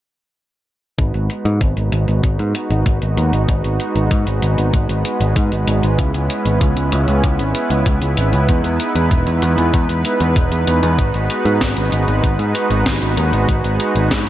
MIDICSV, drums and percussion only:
0, 0, Header, 1, 2, 480
1, 0, Start_track
1, 0, Key_signature, 5, "minor"
1, 0, Tempo, 625000
1, 757, Time_signature, 4, 2, 24, 8
1, 10976, End_track
2, 0, Start_track
2, 0, Title_t, "Drums"
2, 756, Note_on_c, 9, 42, 62
2, 757, Note_on_c, 9, 36, 110
2, 833, Note_off_c, 9, 42, 0
2, 834, Note_off_c, 9, 36, 0
2, 877, Note_on_c, 9, 42, 35
2, 954, Note_off_c, 9, 42, 0
2, 997, Note_on_c, 9, 42, 87
2, 1074, Note_off_c, 9, 42, 0
2, 1117, Note_on_c, 9, 42, 37
2, 1194, Note_off_c, 9, 42, 0
2, 1237, Note_on_c, 9, 36, 103
2, 1237, Note_on_c, 9, 42, 62
2, 1314, Note_off_c, 9, 36, 0
2, 1314, Note_off_c, 9, 42, 0
2, 1359, Note_on_c, 9, 42, 36
2, 1435, Note_off_c, 9, 42, 0
2, 1477, Note_on_c, 9, 42, 89
2, 1554, Note_off_c, 9, 42, 0
2, 1597, Note_on_c, 9, 42, 39
2, 1674, Note_off_c, 9, 42, 0
2, 1716, Note_on_c, 9, 36, 106
2, 1718, Note_on_c, 9, 42, 65
2, 1793, Note_off_c, 9, 36, 0
2, 1795, Note_off_c, 9, 42, 0
2, 1838, Note_on_c, 9, 42, 39
2, 1915, Note_off_c, 9, 42, 0
2, 1957, Note_on_c, 9, 42, 89
2, 2034, Note_off_c, 9, 42, 0
2, 2078, Note_on_c, 9, 42, 39
2, 2155, Note_off_c, 9, 42, 0
2, 2197, Note_on_c, 9, 36, 102
2, 2199, Note_on_c, 9, 42, 61
2, 2273, Note_off_c, 9, 36, 0
2, 2275, Note_off_c, 9, 42, 0
2, 2318, Note_on_c, 9, 42, 36
2, 2395, Note_off_c, 9, 42, 0
2, 2438, Note_on_c, 9, 42, 87
2, 2515, Note_off_c, 9, 42, 0
2, 2559, Note_on_c, 9, 42, 38
2, 2636, Note_off_c, 9, 42, 0
2, 2677, Note_on_c, 9, 36, 118
2, 2678, Note_on_c, 9, 42, 64
2, 2754, Note_off_c, 9, 36, 0
2, 2755, Note_off_c, 9, 42, 0
2, 2798, Note_on_c, 9, 42, 34
2, 2875, Note_off_c, 9, 42, 0
2, 2917, Note_on_c, 9, 42, 85
2, 2994, Note_off_c, 9, 42, 0
2, 3039, Note_on_c, 9, 42, 36
2, 3115, Note_off_c, 9, 42, 0
2, 3157, Note_on_c, 9, 36, 112
2, 3158, Note_on_c, 9, 42, 64
2, 3233, Note_off_c, 9, 36, 0
2, 3234, Note_off_c, 9, 42, 0
2, 3278, Note_on_c, 9, 42, 37
2, 3355, Note_off_c, 9, 42, 0
2, 3398, Note_on_c, 9, 42, 93
2, 3475, Note_off_c, 9, 42, 0
2, 3519, Note_on_c, 9, 42, 38
2, 3596, Note_off_c, 9, 42, 0
2, 3637, Note_on_c, 9, 36, 108
2, 3638, Note_on_c, 9, 42, 66
2, 3713, Note_off_c, 9, 36, 0
2, 3714, Note_off_c, 9, 42, 0
2, 3758, Note_on_c, 9, 42, 38
2, 3835, Note_off_c, 9, 42, 0
2, 3878, Note_on_c, 9, 42, 90
2, 3955, Note_off_c, 9, 42, 0
2, 3999, Note_on_c, 9, 42, 38
2, 4075, Note_off_c, 9, 42, 0
2, 4117, Note_on_c, 9, 36, 109
2, 4118, Note_on_c, 9, 42, 63
2, 4194, Note_off_c, 9, 36, 0
2, 4195, Note_off_c, 9, 42, 0
2, 4239, Note_on_c, 9, 42, 35
2, 4316, Note_off_c, 9, 42, 0
2, 4358, Note_on_c, 9, 42, 84
2, 4435, Note_off_c, 9, 42, 0
2, 4480, Note_on_c, 9, 42, 37
2, 4557, Note_off_c, 9, 42, 0
2, 4597, Note_on_c, 9, 36, 116
2, 4599, Note_on_c, 9, 42, 65
2, 4674, Note_off_c, 9, 36, 0
2, 4676, Note_off_c, 9, 42, 0
2, 4719, Note_on_c, 9, 42, 36
2, 4795, Note_off_c, 9, 42, 0
2, 4838, Note_on_c, 9, 42, 88
2, 4915, Note_off_c, 9, 42, 0
2, 4958, Note_on_c, 9, 42, 38
2, 5035, Note_off_c, 9, 42, 0
2, 5077, Note_on_c, 9, 36, 115
2, 5077, Note_on_c, 9, 42, 60
2, 5154, Note_off_c, 9, 36, 0
2, 5154, Note_off_c, 9, 42, 0
2, 5197, Note_on_c, 9, 42, 35
2, 5274, Note_off_c, 9, 42, 0
2, 5316, Note_on_c, 9, 42, 88
2, 5393, Note_off_c, 9, 42, 0
2, 5437, Note_on_c, 9, 42, 38
2, 5514, Note_off_c, 9, 42, 0
2, 5557, Note_on_c, 9, 36, 112
2, 5557, Note_on_c, 9, 42, 62
2, 5634, Note_off_c, 9, 36, 0
2, 5634, Note_off_c, 9, 42, 0
2, 5678, Note_on_c, 9, 42, 36
2, 5755, Note_off_c, 9, 42, 0
2, 5797, Note_on_c, 9, 42, 89
2, 5874, Note_off_c, 9, 42, 0
2, 5917, Note_on_c, 9, 42, 38
2, 5994, Note_off_c, 9, 42, 0
2, 6037, Note_on_c, 9, 36, 113
2, 6037, Note_on_c, 9, 42, 65
2, 6113, Note_off_c, 9, 42, 0
2, 6114, Note_off_c, 9, 36, 0
2, 6157, Note_on_c, 9, 42, 36
2, 6234, Note_off_c, 9, 42, 0
2, 6277, Note_on_c, 9, 42, 85
2, 6353, Note_off_c, 9, 42, 0
2, 6397, Note_on_c, 9, 42, 37
2, 6474, Note_off_c, 9, 42, 0
2, 6517, Note_on_c, 9, 36, 117
2, 6518, Note_on_c, 9, 42, 61
2, 6594, Note_off_c, 9, 36, 0
2, 6595, Note_off_c, 9, 42, 0
2, 6637, Note_on_c, 9, 42, 34
2, 6714, Note_off_c, 9, 42, 0
2, 6757, Note_on_c, 9, 42, 85
2, 6834, Note_off_c, 9, 42, 0
2, 6878, Note_on_c, 9, 42, 36
2, 6955, Note_off_c, 9, 42, 0
2, 6997, Note_on_c, 9, 36, 106
2, 6998, Note_on_c, 9, 42, 60
2, 7074, Note_off_c, 9, 36, 0
2, 7075, Note_off_c, 9, 42, 0
2, 7118, Note_on_c, 9, 42, 35
2, 7195, Note_off_c, 9, 42, 0
2, 7236, Note_on_c, 9, 42, 86
2, 7313, Note_off_c, 9, 42, 0
2, 7357, Note_on_c, 9, 42, 38
2, 7434, Note_off_c, 9, 42, 0
2, 7477, Note_on_c, 9, 36, 116
2, 7478, Note_on_c, 9, 42, 60
2, 7554, Note_off_c, 9, 36, 0
2, 7555, Note_off_c, 9, 42, 0
2, 7598, Note_on_c, 9, 42, 36
2, 7674, Note_off_c, 9, 42, 0
2, 7717, Note_on_c, 9, 42, 82
2, 7794, Note_off_c, 9, 42, 0
2, 7837, Note_on_c, 9, 42, 36
2, 7914, Note_off_c, 9, 42, 0
2, 7957, Note_on_c, 9, 42, 61
2, 7958, Note_on_c, 9, 36, 117
2, 8034, Note_off_c, 9, 36, 0
2, 8034, Note_off_c, 9, 42, 0
2, 8078, Note_on_c, 9, 42, 36
2, 8155, Note_off_c, 9, 42, 0
2, 8198, Note_on_c, 9, 42, 82
2, 8275, Note_off_c, 9, 42, 0
2, 8317, Note_on_c, 9, 42, 36
2, 8394, Note_off_c, 9, 42, 0
2, 8437, Note_on_c, 9, 36, 112
2, 8437, Note_on_c, 9, 42, 60
2, 8514, Note_off_c, 9, 36, 0
2, 8514, Note_off_c, 9, 42, 0
2, 8557, Note_on_c, 9, 42, 33
2, 8634, Note_off_c, 9, 42, 0
2, 8678, Note_on_c, 9, 42, 76
2, 8755, Note_off_c, 9, 42, 0
2, 8798, Note_on_c, 9, 42, 36
2, 8875, Note_off_c, 9, 42, 0
2, 8917, Note_on_c, 9, 36, 104
2, 8918, Note_on_c, 9, 38, 110
2, 8918, Note_on_c, 9, 42, 57
2, 8994, Note_off_c, 9, 36, 0
2, 8994, Note_off_c, 9, 38, 0
2, 8994, Note_off_c, 9, 42, 0
2, 9037, Note_on_c, 9, 42, 35
2, 9114, Note_off_c, 9, 42, 0
2, 9157, Note_on_c, 9, 42, 84
2, 9234, Note_off_c, 9, 42, 0
2, 9278, Note_on_c, 9, 42, 36
2, 9355, Note_off_c, 9, 42, 0
2, 9397, Note_on_c, 9, 36, 107
2, 9398, Note_on_c, 9, 42, 58
2, 9474, Note_off_c, 9, 36, 0
2, 9475, Note_off_c, 9, 42, 0
2, 9518, Note_on_c, 9, 42, 36
2, 9594, Note_off_c, 9, 42, 0
2, 9637, Note_on_c, 9, 42, 83
2, 9714, Note_off_c, 9, 42, 0
2, 9758, Note_on_c, 9, 42, 35
2, 9835, Note_off_c, 9, 42, 0
2, 9877, Note_on_c, 9, 36, 108
2, 9878, Note_on_c, 9, 38, 112
2, 9878, Note_on_c, 9, 42, 61
2, 9954, Note_off_c, 9, 36, 0
2, 9954, Note_off_c, 9, 38, 0
2, 9954, Note_off_c, 9, 42, 0
2, 9998, Note_on_c, 9, 42, 32
2, 10075, Note_off_c, 9, 42, 0
2, 10118, Note_on_c, 9, 42, 80
2, 10194, Note_off_c, 9, 42, 0
2, 10238, Note_on_c, 9, 42, 35
2, 10315, Note_off_c, 9, 42, 0
2, 10357, Note_on_c, 9, 36, 108
2, 10358, Note_on_c, 9, 42, 59
2, 10434, Note_off_c, 9, 36, 0
2, 10435, Note_off_c, 9, 42, 0
2, 10479, Note_on_c, 9, 42, 35
2, 10556, Note_off_c, 9, 42, 0
2, 10597, Note_on_c, 9, 42, 81
2, 10674, Note_off_c, 9, 42, 0
2, 10719, Note_on_c, 9, 42, 35
2, 10795, Note_off_c, 9, 42, 0
2, 10837, Note_on_c, 9, 36, 100
2, 10838, Note_on_c, 9, 38, 106
2, 10838, Note_on_c, 9, 42, 57
2, 10914, Note_off_c, 9, 36, 0
2, 10915, Note_off_c, 9, 38, 0
2, 10915, Note_off_c, 9, 42, 0
2, 10976, End_track
0, 0, End_of_file